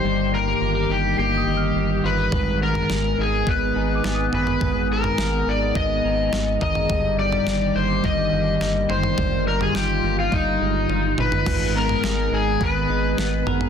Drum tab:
CC |----------------|----------------|----------------|----------------|
SD |----------------|----o-------o---|----o-------o---|----o-------o---|
T1 |----------------|----------------|----------------|----------------|
T2 |----------------|----------------|----------------|----------------|
FT |----------------|o--o----------oo|o--o----------oo|o--o----------oo|
BD |----------------|o-------o-------|o-------o-----o-|o-------o-------|

CC |----------------|x---------------|
SD |----o-----------|----o-------o---|
T1 |------------o---|----------------|
T2 |--------------o-|----------------|
FT |o--o-----------o|o--o----------oo|
BD |o-------o-------|o-------o-------|